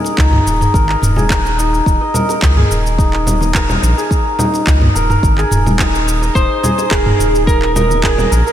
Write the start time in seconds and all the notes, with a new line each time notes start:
Already playing: D#4 G#4 A#4 D#5
0.04 high bongo, shaker
0.18 C#2 D#4, kick, clap, shaker
0.33 mid tom, high conga
0.46 D#1, shaker
0.61 D#5, mid tom, shaker
0.74 G#1 A#4, kick, shaker
0.89 A#4, clap
1.02 D#1, mid tom, high bongo, shaker
1.16 G#4, low conga, shaker
1.30 kick, clap, shaker
1.45 high bongo, shaker
1.58 D#4, shaker
1.74 shaker
1.86 D#1, kick, shaker
2.01 D#5
2.14 A#4, low conga, shaker
2.29 A#4, high bongo, shaker
2.42 C#2, kick, clap, shaker
2.57 G#4, mid tom, high conga
2.70 D#1, shaker
2.86 shaker
2.98 D#4, kick, shaker
3.13 clap
3.27 low conga, shaker
3.41 D#5, high conga, shaker
3.55 A#4, kick, clap, shaker
3.69 A#4, low conga, shaker
3.83 A#1, shaker
3.97 G#4, shaker
4.11 kick, shaker
4.39 D#4, low conga, shaker
4.54 high bongo, shaker
4.67 C#2, kick, clap, shaker
4.81 D#5, mid tom, high conga
4.95 D#1 A#4, shaker
5.10 A#4, mid tom, shaker
5.23 G#1, kick, shaker
5.38 G#4, clap, shaker
5.51 D#1, mid tom, high bongo, shaker
5.66 low conga, shaker
5.79 D#4, kick, clap, shaker
5.94 high bongo, shaker
6.08 shaker
6.22 D#5, shaker
6.35 D#1 D#4 C5, kick, shaker
6.63 G#4, low conga, shaker
6.78 D#5, high bongo, shaker
6.91 D#1 G#4 A#4, kick, clap, shaker
7.06 A#4, mid tom, high conga
7.19 D#1, shaker
7.35 shaker
7.47 A#4, kick, shaker
7.62 clap
7.75 D#4 A#4, low conga, shaker
7.90 high conga, shaker
8.03 G#4, kick, clap, shaker
8.18 D#5, low conga, shaker
8.31 A#1 A#4, shaker
8.46 A#4, shaker